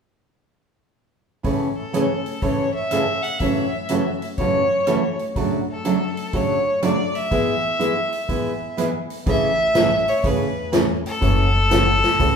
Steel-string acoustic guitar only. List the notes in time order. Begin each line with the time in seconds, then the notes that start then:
1.43 A2 C#3 E3 A3 C#4 G#4
1.93 A2 C#3 E3 A3 C#4 G#4
2.42 A2 C#3 E3 A3 C#4 G#4
2.92 A2 C#3 E3 A3 C#4 G#4
3.40 F#2 C#3 E3 A3 C#4 F#4
3.89 F#2 C#3 E3 A3 C#4 F#4
4.39 F#2 C#3 E3 A3 C#4 F#4
4.87 F#2 C#3 E3 A3 C#4 F#4
5.36 F#2 C#3 F#3 A3 D4 F#4
5.85 F#2 C#3 F#3 A3 D4 F#4
6.33 F#2 C#3 F#3 A3 D4 F#4
6.82 F#2 C#3 F#3 A3 D4 F#4
7.31 E3 G#3 B3 E4 G#4
7.79 E3 G#3 B3 E4 G#4
8.29 E3 G#3 B3 E4 G#4
8.77 E3 G#3 B3 E4 G#4
9.26 C#3 E3 A3 C#4 G#4
9.75 C#3 E3 A3 C#4 G#4
10.24 C#3 E3 A3 C#4 G#4
10.72 C#3 E3 A3 C#4 G#4
11.21 C#3 E3 A3 C#4 F#4
11.71 C#3 E3 A3 C#4 F#4
12.19 C#3 E3 A3 C#4 F#4